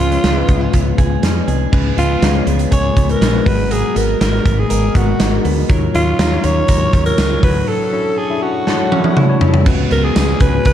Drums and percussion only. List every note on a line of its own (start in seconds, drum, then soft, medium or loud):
0.12 closed hi-hat medium
0.24 snare loud
0.24 closed hi-hat medium
0.49 kick medium
0.49 closed hi-hat medium
0.73 kick medium
0.73 closed hi-hat medium
0.98 kick medium
0.98 closed hi-hat medium
1.23 snare loud
1.23 closed hi-hat medium
1.48 closed hi-hat medium
1.73 kick loud
1.73 crash medium
1.98 closed hi-hat medium
2.22 snare loud
2.22 closed hi-hat medium
2.47 closed hi-hat medium
2.59 closed hi-hat medium
2.72 kick medium
2.72 closed hi-hat medium
2.97 kick medium
2.97 closed hi-hat medium
3.09 closed hi-hat soft
3.22 snare loud
3.22 closed hi-hat medium
3.46 kick loud
3.46 open hi-hat medium
3.71 closed hi-hat medium
3.96 closed hi-hat medium
4.21 snare loud
4.21 closed hi-hat medium
4.46 kick loud
4.46 closed hi-hat medium
4.70 closed hi-hat medium
4.95 kick medium
4.95 closed hi-hat medium
5.20 snare loud
5.20 closed hi-hat medium
5.45 open hi-hat medium
5.69 kick loud
5.69 closed hi-hat medium
5.95 closed hi-hat medium
6.19 snare loud
6.19 closed hi-hat medium
6.19 tambourine medium
6.44 closed hi-hat medium
6.68 kick medium
6.68 closed hi-hat medium
6.93 kick medium
6.93 closed hi-hat medium
7.06 closed hi-hat medium
7.18 snare loud
7.18 closed hi-hat medium
7.18 tambourine medium
7.43 kick loud
7.43 open hi-hat medium
8.67 snare medium
8.92 high tom medium
9.04 high tom medium
9.17 mid tom medium
9.41 floor tom loud
9.54 floor tom medium
9.66 kick loud
9.66 crash loud
9.91 closed hi-hat medium
10.16 snare loud
10.16 closed hi-hat medium
10.16 tambourine medium
10.40 kick loud
10.40 closed hi-hat medium
10.65 kick medium
10.65 closed hi-hat medium